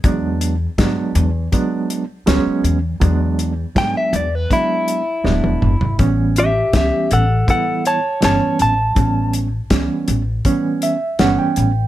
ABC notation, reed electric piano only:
X:1
M:4/4
L:1/16
Q:1/4=81
K:A
V:1 name="Reed electric piano"
z16 | z16 | z16 | z8 z2 e2 f =g3 |]
V:2 name="Reed electric piano"
[F,G,B,D]2 z2 [F,G,B,D]2 z2 [F,G,B,D]2 z2 [F,G,B,C]2 z2 | [F,G,B,D]2 z2 [F,G,B,D]2 z2 [F,G,B,D]2 z2 [F,G,B,D]2 z2 | [E,=G,B,C]2 z2 [E,G,B,C]2 z2 [E,G,B,E]2 z2 [E,G,B,C]2 z2 | [E,=G,B,C]2 z2 [E,G,B,C]2 z2 [E,G,B,C]2 z2 [E,G,B,C]2 z2 |]